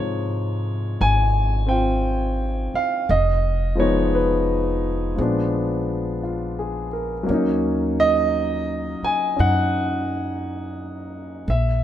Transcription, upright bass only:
0, 0, Header, 1, 3, 480
1, 0, Start_track
1, 0, Tempo, 1048951
1, 1408, Time_signature, 4, 2, 24, 8
1, 5417, End_track
2, 0, Start_track
2, 0, Title_t, "Upright bass"
2, 0, Program_c, 0, 32
2, 0, Note_on_c, 0, 44, 67
2, 436, Note_off_c, 0, 44, 0
2, 461, Note_on_c, 0, 32, 75
2, 1231, Note_off_c, 0, 32, 0
2, 1415, Note_on_c, 0, 29, 78
2, 2352, Note_off_c, 0, 29, 0
2, 2372, Note_on_c, 0, 34, 70
2, 3312, Note_off_c, 0, 34, 0
2, 3334, Note_on_c, 0, 39, 68
2, 4108, Note_off_c, 0, 39, 0
2, 4298, Note_on_c, 0, 42, 74
2, 5233, Note_off_c, 0, 42, 0
2, 5252, Note_on_c, 0, 34, 70
2, 5417, Note_off_c, 0, 34, 0
2, 5417, End_track
3, 0, Start_track
3, 0, Title_t, "Muted upright bass strokes"
3, 1253, Note_on_c, 9, 29, 30
3, 1298, Note_off_c, 9, 29, 0
3, 4131, Note_on_c, 9, 29, 33
3, 4177, Note_off_c, 9, 29, 0
3, 5417, End_track
0, 0, End_of_file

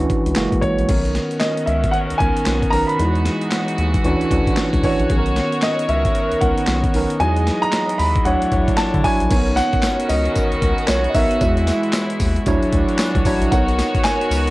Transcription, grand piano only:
0, 0, Header, 1, 2, 480
1, 0, Start_track
1, 0, Key_signature, 5, "major"
1, 0, Tempo, 526316
1, 809, Time_signature, 4, 2, 24, 8
1, 13227, End_track
2, 0, Start_track
2, 0, Title_t, "Grand piano"
2, 0, Program_c, 0, 0
2, 0, Note_on_c, 0, 71, 94
2, 289, Note_off_c, 0, 71, 0
2, 561, Note_on_c, 0, 73, 99
2, 1248, Note_off_c, 0, 73, 0
2, 1272, Note_on_c, 0, 75, 85
2, 1513, Note_on_c, 0, 76, 84
2, 1528, Note_off_c, 0, 75, 0
2, 1746, Note_on_c, 0, 78, 100
2, 1768, Note_off_c, 0, 76, 0
2, 1803, Note_off_c, 0, 78, 0
2, 1988, Note_on_c, 0, 80, 101
2, 2467, Note_on_c, 0, 82, 103
2, 2493, Note_off_c, 0, 80, 0
2, 2616, Note_on_c, 0, 83, 90
2, 2629, Note_off_c, 0, 82, 0
2, 3309, Note_off_c, 0, 83, 0
2, 4416, Note_on_c, 0, 73, 91
2, 5096, Note_off_c, 0, 73, 0
2, 5131, Note_on_c, 0, 75, 89
2, 5353, Note_off_c, 0, 75, 0
2, 5370, Note_on_c, 0, 76, 92
2, 5843, Note_on_c, 0, 78, 90
2, 5864, Note_off_c, 0, 76, 0
2, 6564, Note_on_c, 0, 80, 98
2, 6587, Note_off_c, 0, 78, 0
2, 6948, Note_on_c, 0, 82, 116
2, 6965, Note_off_c, 0, 80, 0
2, 7278, Note_on_c, 0, 83, 98
2, 7295, Note_off_c, 0, 82, 0
2, 7506, Note_off_c, 0, 83, 0
2, 7524, Note_on_c, 0, 78, 93
2, 7997, Note_on_c, 0, 81, 99
2, 8210, Note_off_c, 0, 78, 0
2, 8245, Note_on_c, 0, 80, 105
2, 8250, Note_off_c, 0, 81, 0
2, 8693, Note_off_c, 0, 80, 0
2, 8720, Note_on_c, 0, 78, 120
2, 9201, Note_on_c, 0, 75, 84
2, 9219, Note_off_c, 0, 78, 0
2, 9888, Note_off_c, 0, 75, 0
2, 9915, Note_on_c, 0, 73, 87
2, 10098, Note_off_c, 0, 73, 0
2, 10118, Note_on_c, 0, 75, 62
2, 10167, Note_on_c, 0, 76, 105
2, 10168, Note_off_c, 0, 75, 0
2, 11092, Note_off_c, 0, 76, 0
2, 12325, Note_on_c, 0, 78, 91
2, 12804, Note_on_c, 0, 80, 89
2, 12821, Note_off_c, 0, 78, 0
2, 13227, Note_off_c, 0, 80, 0
2, 13227, End_track
0, 0, End_of_file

